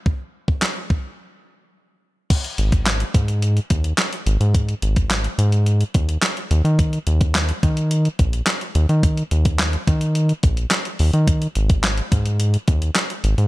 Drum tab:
CC |----------------|x---------------|----------------|----------------|
HH |----------------|xxxxxxxxxxxxxxxx|xxxxxxxxxxxxxxxx|xxxxxxxxxxxxxxxx|
CP |----x-----------|----x-------x---|----x-------x---|----x-------x---|
SD |----o-----------|----o-------o---|----o-------o---|----o-------o---|
BD |o--o--o---------|o--o--o---o-----|o--o------o-----|o--o--o---o-----|

CC |----------------|----------------|
HH |xxxxxxxxxxxxxxox|xxxxxxxxxxxxxxxx|
CP |----x-------x---|----x-------x---|
SD |----o-------o---|----o-------o---|
BD |o--o--o---o-----|o--o--o---o-----|